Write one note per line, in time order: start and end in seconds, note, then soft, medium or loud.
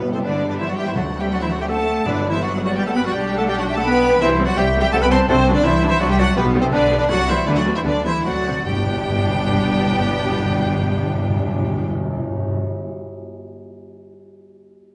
0.00 0.39 G2 loud
0.00 0.93 G2 medium
0.00 0.10 B2 medium
0.00 0.93 G3 medium
0.00 0.10 B3 medium
0.00 0.12 B3 medium
0.00 0.93 B3 medium
0.11 0.24 C3 medium
0.11 0.25 C3 medium
0.11 0.26 C4 medium
0.11 0.24 C4 medium
0.11 0.18 A4 medium
0.11 0.17 C5 medium
0.23 0.47 D3 medium
0.23 0.47 D4 medium
0.23 0.48 D4 medium
0.23 0.29 B4 medium
0.23 0.47 D5 medium
0.47 0.53 D3 medium
0.47 0.60 D3 medium
0.47 0.60 D4 medium
0.47 0.59 D4 medium
0.47 0.61 B4 medium
0.47 0.53 D5 medium
0.58 0.69 E3 medium
0.58 0.64 E3 medium
0.58 0.64 E4 medium
0.58 0.69 E4 medium
0.58 0.68 C5 medium
0.58 0.68 E5 loud
0.68 0.78 F#3 medium
0.68 0.78 F#4 medium
0.68 0.77 F#4 medium
0.68 0.73 D5 medium
0.68 0.78 F#5 medium
0.76 0.87 G3 medium
0.76 0.82 G3 medium
0.76 0.89 G4 medium
0.76 0.87 G4 medium
0.76 0.85 E5 medium
0.76 0.86 G5 loud
0.86 0.91 E3 medium
0.86 0.91 E4 medium
0.86 0.98 E4 medium
0.86 0.91 C5 medium
0.86 0.96 E5 medium
0.95 2.06 D2 medium
0.95 1.47 D3 loud
0.95 1.07 F#3 medium
0.95 1.04 F#3 medium
0.95 2.01 A3 medium
0.95 2.02 C4 medium
0.95 1.20 F#4 medium
0.95 1.04 F#4 medium
0.95 1.20 D5 medium
0.95 1.20 F#5 medium
1.19 1.32 G3 medium
1.19 1.25 G4 medium
1.19 1.26 G4 medium
1.19 1.26 E5 medium
1.19 1.32 G5 medium
1.30 1.42 F#3 medium
1.30 1.37 F#4 medium
1.30 1.40 D5 medium
1.30 1.41 F#5 loud
1.40 1.51 E3 medium
1.40 1.51 E4 medium
1.40 1.46 E4 medium
1.40 1.45 C5 medium
1.40 1.51 E5 medium
1.50 1.60 F#3 medium
1.50 1.61 F#3 medium
1.50 1.60 F#4 medium
1.50 1.55 F#4 medium
1.50 1.54 D5 medium
1.50 1.60 F#5 loud
1.59 1.69 G3 medium
1.59 1.70 G3 medium
1.59 1.69 G4 medium
1.59 1.65 G4 medium
1.59 1.65 E5 medium
1.59 1.64 G5 loud
1.68 2.05 A3 loud
1.68 2.06 A3 loud
1.68 2.05 A4 medium
1.68 2.08 A4 medium
1.68 2.05 F#5 medium
1.68 2.05 A5 loud
2.04 3.11 G1 medium
2.04 2.56 G2 loud
2.04 2.29 D3 medium
2.04 2.30 D3 medium
2.04 4.17 G3 medium
2.04 3.09 B3 medium
2.04 2.29 D4 medium
2.04 2.30 B4 medium
2.04 2.30 D5 loud
2.29 2.34 E3 medium
2.29 2.41 E3 medium
2.29 2.41 E4 medium
2.29 2.35 E4 medium
2.29 2.42 C5 medium
2.29 2.42 E5 loud
2.40 2.51 F#3 medium
2.40 2.64 F#3 medium
2.40 2.50 F#4 medium
2.40 2.53 F#4 medium
2.40 2.49 D5 medium
2.40 2.64 F#5 loud
2.64 2.77 F#3 medium
2.64 2.70 F#3 medium
2.64 2.71 F#4 medium
2.64 2.78 F#4 medium
2.64 2.78 D5 loud
2.64 2.70 F#5 loud
2.75 2.86 G3 medium
2.75 2.81 G3 medium
2.75 2.82 G4 medium
2.75 2.82 D5 medium
2.75 2.85 G5 loud
2.80 2.88 G4 medium
2.85 2.95 A3 medium
2.85 2.90 A3 medium
2.85 2.96 A4 medium
2.85 2.95 A4 medium
2.85 2.98 F#5 medium
2.85 2.90 A5 loud
2.94 2.99 B3 loud
2.94 3.04 B3 loud
2.94 3.05 B4 loud
2.94 3.07 B4 loud
2.94 3.04 G5 loud
2.94 3.04 B5 loud
3.04 3.13 F#3 medium
3.04 3.13 F#3 loud
3.04 3.13 F#4 medium
3.04 3.14 F#4 medium
3.04 3.13 D5 medium
3.04 3.13 F#5 loud
3.12 4.19 B1 medium
3.12 3.37 G3 medium
3.12 4.17 D4 medium
3.12 3.37 G4 medium
3.12 3.37 D5 medium
3.12 3.37 G5 loud
3.36 3.49 A3 loud
3.36 3.43 A4 loud
3.36 3.50 A4 loud
3.36 3.50 F#5 medium
3.36 3.41 A5 loud
3.48 3.58 G3 loud
3.48 3.60 G4 loud
3.48 3.59 G4 loud
3.48 3.58 D5 loud
3.48 3.58 G5 loud
3.58 3.67 F#3 medium
3.58 3.68 F#3 medium
3.58 3.69 F#4 medium
3.58 3.69 F#4 loud
3.58 3.62 D5 medium
3.58 3.67 F#5 loud
3.67 3.76 G3 medium
3.67 3.77 G3 loud
3.67 3.76 G4 loud
3.67 3.77 G4 loud
3.67 3.76 E5 loud
3.67 3.76 G5 loud
3.76 3.85 A3 loud
3.76 3.85 A3 medium
3.76 3.81 A4 loud
3.76 3.86 A4 loud
3.76 3.86 F#5 loud
3.76 3.85 A5 loud
3.84 4.21 B3 loud
3.84 4.23 B4 loud
3.84 4.22 B4 loud
3.84 4.20 G5 loud
3.84 4.20 B5 loud
4.20 4.53 C2 loud
4.20 4.45 E3 loud
4.20 4.33 E3 loud
4.20 4.29 G3 medium
4.20 4.29 C4 medium
4.20 4.45 E4 loud
4.20 4.47 E4 loud
4.20 4.46 C5 loud
4.20 4.28 E5 loud
4.39 4.46 G3 medium
4.39 4.46 C4 medium
4.45 4.50 F#3 loud
4.45 4.51 F#3 loud
4.45 4.57 F#4 loud
4.45 4.59 F#4 loud
4.45 4.58 D5 loud
4.45 4.57 F#5 loud
4.56 4.89 C2 loud
4.56 4.79 G3 loud
4.56 4.64 G3 medium
4.56 4.65 G3 loud
4.56 4.64 C4 medium
4.56 4.64 G4 loud
4.56 4.80 G4 loud
4.56 4.80 E5 loud
4.56 4.79 G5 loud
4.76 4.83 G3 medium
4.76 4.83 C4 medium
4.80 4.86 G3 loud
4.80 4.92 G4 loud
4.80 4.86 G4 loud
4.80 4.86 E5 loud
4.80 4.92 G5 loud
4.91 5.25 C2 loud
4.91 5.01 G3 medium
4.91 4.96 A3 loud
4.91 5.01 A3 loud
4.91 5.01 C4 medium
4.91 5.03 A4 loud
4.91 5.02 A4 loud
4.91 4.96 F#5 loud
4.91 4.95 A5 loud
5.02 5.06 B3 loud
5.02 5.11 B3 loud
5.02 5.10 B4 loud
5.02 5.11 B4 loud
5.02 5.12 G5 loud
5.02 5.05 B5 loud
5.11 5.19 G3 medium
5.11 5.29 C4 loud
5.11 5.18 C4 loud
5.11 5.18 C4 medium
5.11 5.27 C5 loud
5.11 5.18 C5 loud
5.11 5.28 A5 loud
5.11 5.18 C6 loud
5.27 5.61 C2 loud
5.27 5.52 C3 loud
5.27 5.37 C3 loud
5.27 5.36 F#3 loud
5.27 5.53 C4 loud
5.27 5.36 D4 medium
5.27 5.35 A4 loud
5.27 5.52 C5 loud
5.48 5.55 F#3 medium
5.48 5.55 D4 medium
5.52 5.64 D3 loud
5.52 5.57 D3 loud
5.52 5.65 D4 loud
5.52 5.58 B4 medium
5.52 5.65 D5 loud
5.63 5.96 C2 loud
5.63 5.87 E3 loud
5.63 5.73 E3 loud
5.63 5.72 F#3 medium
5.63 5.72 D4 medium
5.63 5.87 E4 loud
5.63 5.87 C5 loud
5.63 5.87 E5 loud
5.82 5.90 F#3 medium
5.82 5.90 D4 medium
5.88 6.00 E3 loud
5.88 5.93 E3 loud
5.88 5.93 E4 loud
5.88 6.00 E4 loud
5.88 6.00 C5 loud
5.88 6.00 E5 loud
5.98 6.32 C2 loud
5.98 6.09 F#3 loud
5.98 6.04 F#3 loud
5.98 6.07 F#3 medium
5.98 6.07 D4 medium
5.98 6.09 F#4 loud
5.98 6.09 F#4 medium
5.98 6.04 D5 loud
5.98 6.08 F#5 loud
6.09 6.13 G3 loud
6.09 6.18 G3 loud
6.09 6.21 G4 loud
6.09 6.19 G4 loud
6.09 6.20 E5 loud
6.09 6.19 G5 loud
6.17 6.36 F#3 loud
6.17 6.26 F#3 medium
6.17 6.27 D4 medium
6.17 6.25 F#4 loud
6.17 6.38 F#4 loud
6.17 6.37 D5 loud
6.17 6.36 F#5 loud
6.36 6.69 B1 loud
6.36 6.60 B2 loud
6.36 6.61 B2 loud
6.36 6.44 G3 medium
6.36 6.44 B3 medium
6.36 6.60 B3 loud
6.36 6.61 B3 loud
6.36 6.43 G4 loud
6.36 6.44 B4 loud
6.55 6.62 G3 medium
6.55 6.62 B3 medium
6.60 6.65 C3 loud
6.60 6.73 C3 loud
6.60 6.72 C4 loud
6.60 6.66 C4 loud
6.60 6.74 A4 medium
6.60 6.66 C5 loud
6.72 7.06 B1 loud
6.72 6.97 D3 loud
6.72 6.96 D3 loud
6.72 6.80 G3 medium
6.72 6.80 B3 medium
6.72 6.84 D4 loud
6.72 6.97 D4 loud
6.72 6.98 B4 loud
6.72 6.96 D5 loud
6.90 6.98 G3 medium
6.90 6.98 B3 medium
6.97 7.02 D3 medium
6.97 7.04 D3 loud
6.97 7.11 D4 loud
6.97 7.10 D4 loud
6.97 7.04 B4 loud
6.97 7.03 D5 loud
7.08 7.43 C2 loud
7.08 7.17 F#3 loud
7.08 7.19 F#3 loud
7.08 7.17 G3 medium
7.08 7.17 A3 medium
7.08 7.29 F#4 loud
7.08 7.28 D5 loud
7.08 7.28 F#5 loud
7.27 7.36 E3 medium
7.27 7.48 E3 medium
7.27 7.35 G3 medium
7.27 7.36 A3 medium
7.27 7.47 E4 medium
7.27 7.48 E4 medium
7.27 7.47 C5 medium
7.27 7.47 E5 loud
7.45 7.82 D2 loud
7.45 7.56 D3 loud
7.45 7.57 D3 loud
7.45 7.55 G3 medium
7.45 7.55 B3 medium
7.45 7.59 D4 medium
7.45 7.52 B4 loud
7.45 7.50 D5 loud
7.50 7.58 D4 loud
7.56 7.76 F#3 medium
7.56 7.77 F#3 loud
7.56 7.76 F#4 medium
7.56 7.77 F#4 medium
7.56 7.75 D5 loud
7.56 7.64 F#5 loud
7.65 7.73 G3 medium
7.65 7.74 B3 medium
7.75 7.80 E3 medium
7.75 7.86 E3 medium
7.75 7.81 E4 medium
7.75 7.86 E4 medium
7.75 7.80 C5 medium
7.75 7.80 E5 medium
7.84 8.21 D2 medium
7.84 8.05 D3 loud
7.84 7.93 D3 medium
7.84 7.92 G3 medium
7.84 7.92 B3 medium
7.84 8.04 D4 medium
7.84 8.06 D4 loud
7.84 7.92 B4 medium
7.84 8.05 D5 loud
8.04 8.25 E3 medium
8.04 8.13 E3 medium
8.04 8.12 G3 medium
8.04 8.12 B3 medium
8.04 8.24 E4 loud
8.04 8.26 E4 medium
8.04 8.11 C5 medium
8.04 8.25 E5 loud
8.24 8.62 D2 medium
8.24 8.32 D3 soft
8.24 8.66 F#3 medium
8.24 8.34 A3 medium
8.24 8.33 C4 medium
8.24 8.65 F#4 medium
8.24 8.68 F#4 medium
8.24 8.65 D5 medium
8.24 8.65 F#5 loud
8.43 8.50 D3 medium
8.43 8.54 A3 medium
8.43 8.54 C4 medium
8.51 8.59 D3 medium
8.65 11.88 G1 medium
8.65 8.72 G2 medium
8.65 11.87 G3 medium
8.65 11.88 G3 medium
8.65 11.88 B3 medium
8.65 11.88 D4 medium
8.65 11.88 G4 medium
8.65 11.89 G4 medium
8.65 11.87 G5 medium
8.65 11.88 G5 loud
8.72 8.78 G2 medium
8.78 8.84 G2 medium
8.84 8.90 G2 medium
8.90 8.96 G2 medium
8.96 9.03 G2 medium
9.03 9.09 G2 medium
9.09 9.15 G2 medium
9.15 9.21 G2 medium
9.21 9.28 G2 medium
9.28 9.34 G2 medium
9.34 9.40 G2 medium
9.40 9.47 G2 medium
9.47 9.53 G2 medium
9.53 9.60 G2 loud
9.60 9.66 G2 medium
9.66 9.72 G2 medium
9.73 9.79 G2 medium
9.79 9.85 G2 loud
9.85 9.92 G2 medium
9.92 9.98 G2 medium
9.98 10.05 G2 medium
10.05 10.11 G2 medium
10.11 10.18 G2 medium
10.18 10.24 G2 medium
10.24 10.30 G2 medium
10.31 10.37 G2 loud
10.37 10.43 G2 medium
10.44 10.51 G2 loud
10.51 10.57 G2 medium
10.57 10.64 G2 medium
10.64 10.70 G2 medium
10.71 10.77 G2 medium
10.77 10.83 G2 medium
10.83 10.89 G2 medium
10.89 10.96 G2 medium
10.96 11.02 G2 medium
11.02 11.08 G2 medium
11.08 11.14 G2 medium
11.15 11.21 G2 medium
11.21 11.27 G2 medium
11.28 11.34 G2 medium
11.34 11.40 G2 loud
11.40 11.46 G2 medium
11.46 11.52 G2 loud
11.52 11.58 G2 medium
11.58 11.65 G2 loud
11.65 11.71 G2 medium
11.71 11.78 G2 medium
11.78 11.84 G2 medium
11.84 11.91 G2 medium
11.91 11.97 G2 medium
11.97 12.03 G2 medium
12.03 12.10 G2 medium
12.10 12.17 G2 loud
12.17 12.23 G2 medium
12.23 12.29 G2 medium
12.30 12.36 G2 medium
12.36 12.42 G2 medium
12.42 12.48 G2 medium
12.48 12.54 G2 medium
12.54 12.61 G2 medium